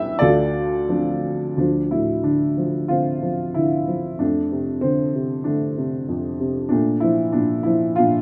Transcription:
0.00 0.17 E2 medium
0.00 0.18 E3 medium
0.00 0.18 G3 soft
0.00 0.18 D4 medium
0.00 0.17 B4 medium
0.00 0.17 D5 medium
0.00 0.21 E5 loud
0.00 0.22 G5 loud
0.19 1.54 D2 medium
0.19 1.54 F4 medium
0.19 1.54 A4 medium
0.19 1.19 D5 loud
0.89 1.56 F3 soft
0.89 1.56 C4 soft
0.89 1.56 D4 medium
1.57 4.16 D2 soft
1.57 2.56 F3 soft
1.57 1.92 D4 medium
1.91 3.18 A2 soft
1.91 2.25 E4 medium
2.24 2.88 D3 soft
2.24 2.85 D4 medium
2.57 3.21 F3 soft
2.88 3.54 D3 soft
2.88 4.16 C4 medium
2.88 3.56 F4 medium
3.22 3.86 F3 soft
3.54 4.18 D3 soft
3.54 4.21 E4 medium
3.88 4.19 F3 soft
4.19 6.07 F2 soft
4.19 5.42 A3 soft
4.19 4.84 D4 medium
4.52 5.14 C3 soft
4.81 5.45 D3 soft
4.81 5.47 C4 medium
5.15 5.76 C3 soft
5.44 6.68 D3 soft
5.44 6.68 A3 soft
5.44 6.35 D4 medium
5.78 6.39 C3 soft
6.09 6.70 F2 soft
6.40 6.71 C3 soft
6.69 7.33 A#2 medium
6.69 7.94 A3 soft
6.69 7.03 D4 medium
7.00 7.65 F3 soft
7.00 7.34 E4 medium
7.32 7.98 A#2 medium
7.32 7.66 D4 medium
7.63 8.22 F3 soft
7.63 7.98 E4 medium
7.96 8.22 A#2 medium
7.96 8.22 D4 medium
7.96 8.22 F4 medium

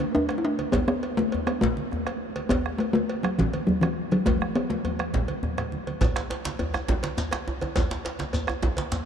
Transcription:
0.00 0.14 D4 medium
0.00 cowbell soft
0.00 djembe slap soft
0.00 high conga medium
0.14 0.36 D4 loud
0.14 bombo rim soft
0.14 high conga soft
0.14 djembe bass medium
0.29 bombo rim medium
0.29 cowbell soft
0.29 djembe slap medium
0.29 djembe tone medium
0.38 0.46 E4 medium
0.45 0.74 D4 loud
0.59 cowbell soft
0.59 high conga medium
0.72 0.87 B3 medium
0.72 bombo low medium
0.72 cowbell medium
0.72 djembe slap medium
0.72 high conga soft
0.72 low conga medium
0.72 djembe bass medium
0.88 1.19 B3 medium
0.88 bombo rim medium
0.88 djembe tone medium
1.03 cowbell soft
1.03 djembe slap soft
1.17 1.48 A3 loud
1.17 bombo rim soft
1.17 djembe slap medium
1.17 high conga medium
1.32 cowbell medium
1.32 djembe bass medium
1.47 1.63 B3 medium
1.47 bombo rim medium
1.47 cowbell soft
1.47 djembe tone soft
1.61 2.35 A3 medium
1.61 bombo low medium
1.61 djembe slap medium
1.61 low conga medium
1.77 djembe slap soft
1.77 high conga medium
1.91 bombo rim soft
1.91 high conga soft
1.91 djembe bass medium
2.07 bombo rim medium
2.07 cowbell soft
2.07 djembe slap medium
2.07 djembe tone medium
2.36 cowbell medium
2.36 high conga soft
2.49 2.80 B3 medium
2.49 bombo low medium
2.49 cowbell medium
2.49 djembe slap medium
2.49 high conga soft
2.49 low conga medium
2.49 djembe bass medium
2.66 bombo rim medium
2.66 djembe tone medium
2.78 2.93 A3 medium
2.78 cowbell soft
2.78 djembe slap soft
2.93 3.25 A3 medium
2.93 bombo rim soft
2.93 djembe slap medium
2.93 high conga medium
3.09 cowbell medium
3.23 3.38 F#3 medium
3.23 bombo rim medium
3.23 cowbell medium
3.23 djembe tone medium
3.39 3.68 E3 medium
3.39 bombo low medium
3.39 djembe slap medium
3.39 low conga medium
3.53 cowbell medium
3.53 djembe slap soft
3.53 high conga medium
3.67 3.81 F#3 medium
3.67 high conga soft
3.67 djembe bass medium
3.81 4.13 E3 medium
3.81 bombo rim medium
3.81 cowbell soft
3.81 djembe slap medium
3.81 djembe tone medium
4.11 4.25 F#3 medium
4.11 cowbell soft
4.11 high conga medium
4.26 4.57 A3 medium
4.26 bombo rim soft
4.26 bombo low loud
4.26 cowbell medium
4.26 djembe slap medium
4.26 low conga medium
4.26 djembe bass medium
4.41 bombo rim medium
4.41 high conga soft
4.41 djembe tone medium
4.55 4.71 B3 medium
4.55 bombo rim soft
4.55 cowbell soft
4.55 high conga soft
4.70 5.14 A3 medium
4.70 djembe slap medium
4.70 high conga medium
4.84 bombo rim soft
4.84 cowbell soft
4.84 djembe bass medium
4.99 bombo rim medium
4.99 cowbell soft
4.99 djembe tone medium
5.14 bombo rim soft
5.14 bombo low medium
5.14 djembe slap medium
5.14 low conga medium
5.28 cowbell soft
5.28 djembe slap soft
5.28 high conga medium
5.43 bombo rim soft
5.43 djembe bass medium
5.43 low conga soft
5.58 bombo rim medium
5.58 cowbell soft
5.58 djembe slap medium
5.58 djembe tone medium
5.58 low conga soft
5.72 high conga medium
5.87 cowbell soft
5.87 high conga medium
6.01 bombo low loud
6.01 cowbell medium
6.01 djembe slap medium
6.01 djembe tone medium
6.01 high conga soft
6.01 djembe bass medium
6.01 low conga medium
6.01 shekere medium
6.16 bombo rim medium
6.16 djembe slap medium
6.16 djembe tone medium
6.16 shekere soft
6.30 cowbell soft
6.30 djembe slap soft
6.30 djembe slap medium
6.45 bombo rim soft
6.45 djembe slap medium
6.45 high conga medium
6.45 shekere soft
6.59 cowbell medium
6.59 djembe tone medium
6.59 djembe bass medium
6.74 bombo rim medium
6.74 cowbell soft
6.74 djembe tone medium
6.74 shekere soft
6.88 bombo low medium
6.88 djembe slap medium
6.88 djembe tone loud
6.88 low conga medium
7.03 cowbell soft
7.03 djembe slap soft
7.03 djembe slap medium
7.03 high conga medium
7.18 bombo rim soft
7.18 djembe slap medium
7.18 high conga soft
7.18 djembe bass medium
7.18 shekere medium
7.31 bombo rim medium
7.31 cowbell soft
7.31 djembe slap medium
7.31 djembe tone medium
7.48 djembe tone medium
7.61 cowbell soft
7.61 high conga medium
7.61 djembe tone medium
7.76 bombo low loud
7.76 cowbell medium
7.76 djembe slap medium
7.76 high conga soft
7.76 djembe tone medium
7.76 low conga medium
7.76 djembe bass medium
7.76 shekere medium
7.91 djembe slap medium
7.91 djembe tone medium
7.91 shekere soft
8.05 cowbell soft
8.05 djembe slap medium
8.19 bombo rim soft
8.19 djembe slap medium
8.19 high conga medium
8.19 shekere soft
8.33 cowbell medium
8.33 djembe tone medium
8.33 djembe bass medium
8.33 shekere medium
8.47 bombo rim medium
8.47 cowbell soft
8.47 djembe tone medium
8.47 shekere soft
8.62 bombo low medium
8.62 djembe slap medium
8.62 djembe tone loud
8.62 low conga medium
8.77 cowbell soft
8.77 djembe slap medium
8.77 djembe slap soft
8.77 high conga medium
8.91 bombo rim soft
8.91 djembe slap medium
8.91 high conga soft
8.91 djembe bass medium
8.91 shekere medium

